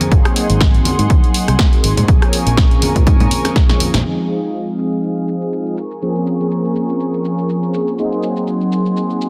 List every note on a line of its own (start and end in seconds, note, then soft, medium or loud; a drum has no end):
0.01 closed hi-hat medium
0.01 high conga medium
0.11 0.20 G#1 medium
0.11 0.46 F#3 loud
0.11 0.46 A#3 medium
0.11 0.47 C4 medium
0.11 0.47 D#4 medium
0.11 2.06 G#4 medium
0.11 0.47 G#4 loud
0.11 2.06 F#5 medium
0.11 2.06 C6 medium
0.11 kick loud
0.11 closed hi-hat medium
0.11 tambourine soft
0.25 cross-stick medium
0.25 closed hi-hat soft
0.25 tambourine soft
0.36 open hi-hat loud
0.36 tambourine loud
0.49 0.78 G#1 loud
0.49 2.05 F#3 medium
0.49 2.06 A#3 medium
0.49 2.06 C4 medium
0.49 2.06 D#4 medium
0.49 2.06 G#4 medium
0.49 closed hi-hat medium
0.61 kick loud
0.61 snare loud
0.61 closed hi-hat medium
0.74 closed hi-hat soft
0.74 tambourine soft
0.85 open hi-hat medium
0.85 tambourine medium
0.85 high conga medium
0.99 1.06 G#2 loud
0.99 closed hi-hat medium
0.99 tambourine soft
1.10 kick loud
1.10 closed hi-hat medium
1.10 tambourine medium
1.24 closed hi-hat soft
1.24 tambourine soft
1.34 open hi-hat loud
1.34 tambourine medium
1.48 1.55 C2 medium
1.48 cross-stick medium
1.48 closed hi-hat medium
1.48 tambourine soft
1.59 kick loud
1.59 snare loud
1.59 closed hi-hat medium
1.73 closed hi-hat soft
1.83 1.92 G#1 medium
1.83 open hi-hat loud
1.83 tambourine medium
1.97 2.04 G#2 medium
1.97 closed hi-hat medium
1.97 tambourine soft
1.97 low conga medium
2.08 2.17 A#1 loud
2.08 2.43 F3 medium
2.08 2.43 A#3 medium
2.08 2.43 C4 medium
2.08 2.43 C#4 medium
2.08 2.44 G#4 loud
2.08 4.03 A#4 medium
2.08 4.03 G#5 medium
2.08 4.03 C#6 medium
2.08 kick loud
2.08 closed hi-hat medium
2.08 tambourine medium
2.22 cross-stick medium
2.22 closed hi-hat soft
2.22 tambourine soft
2.32 open hi-hat loud
2.32 tambourine medium
2.46 2.75 A#1 medium
2.46 4.02 F3 medium
2.46 4.02 A#3 medium
2.46 4.03 C4 medium
2.46 4.03 C#4 medium
2.46 4.03 G#4 medium
2.46 closed hi-hat medium
2.46 tambourine soft
2.57 kick loud
2.57 snare loud
2.57 closed hi-hat medium
2.71 closed hi-hat soft
2.82 muted fingered electric bass stroke soft
2.82 open hi-hat medium
2.82 tambourine medium
2.82 high conga medium
2.95 3.02 A#2 loud
2.95 kick medium
2.95 closed hi-hat medium
2.95 tambourine soft
2.95 low conga medium
3.07 3.15 G#2 medium
3.07 kick loud
3.07 closed hi-hat medium
3.07 tambourine medium
3.20 3.27 G#2 loud
3.20 closed hi-hat soft
3.20 tambourine soft
3.20 low conga loud
3.31 open hi-hat loud
3.31 tambourine loud
3.31 high conga medium
3.45 cross-stick medium
3.45 snare soft
3.45 closed hi-hat medium
3.45 tambourine soft
3.56 kick loud
3.56 snare medium
3.56 closed hi-hat medium
3.69 snare medium
3.69 closed hi-hat soft
3.69 tambourine soft
3.69 low conga medium
3.80 muted fingered electric bass stroke soft
3.80 open hi-hat loud
3.80 tambourine loud
3.80 high conga medium
3.94 4.01 A#1 medium
3.94 snare medium
3.94 closed hi-hat medium
3.94 tambourine soft
3.94 high conga medium
4.05 4.40 F3 medium
4.05 4.40 G#3 medium
4.05 4.40 C4 medium
4.05 4.40 D#4 medium
4.05 5.76 G#4 medium
4.05 4.40 G#4 loud
4.05 5.76 F5 medium
4.05 5.75 D#6 medium
4.30 shaker medium
4.43 5.76 F3 medium
4.43 5.76 G#3 medium
4.43 5.76 C4 medium
4.43 5.76 D#4 medium
4.43 5.76 G#4 medium
4.54 shaker soft
4.68 shaker soft
4.79 shaker medium
4.92 shaker soft
5.03 shaker soft
5.17 shaker soft
5.28 shaker medium
5.42 shaker soft
5.53 shaker soft
5.66 shaker soft
5.77 7.96 A#4 medium
5.77 7.96 G#5 medium
5.77 7.96 C#6 medium
5.77 shaker medium
5.91 shaker soft
6.02 6.37 F3 medium
6.02 6.37 A#3 medium
6.02 6.37 C4 medium
6.02 6.37 C#4 medium
6.02 6.37 G#4 medium
6.02 shaker soft
6.16 shaker soft
6.27 shaker medium
6.39 7.96 F3 medium
6.39 7.96 A#3 medium
6.39 7.96 C4 medium
6.39 7.96 C#4 medium
6.39 7.96 G#4 medium
6.39 shaker soft
6.51 shaker soft
6.65 shaker soft
6.76 shaker medium
6.89 shaker soft
7.00 shaker soft
7.14 shaker soft
7.25 shaker medium
7.38 shaker soft
7.49 shaker soft
7.63 shaker soft
7.74 shaker medium
7.88 shaker soft
7.98 8.33 F#3 medium
7.98 8.33 A#3 medium
7.98 8.33 C4 medium
7.98 8.34 D#4 medium
7.98 9.29 G#4 medium
7.98 8.34 G#4 loud
7.98 9.29 F#5 medium
7.98 9.29 C6 medium
7.98 shaker soft
8.12 shaker soft
8.23 shaker medium
8.36 9.29 F#3 medium
8.36 9.29 A#3 medium
8.36 9.29 C4 medium
8.36 9.29 D#4 medium
8.36 9.29 G#4 medium
8.36 shaker soft
8.47 shaker soft
8.61 shaker soft
8.72 shaker medium
8.86 shaker soft
8.97 shaker soft
9.10 shaker soft
9.21 shaker medium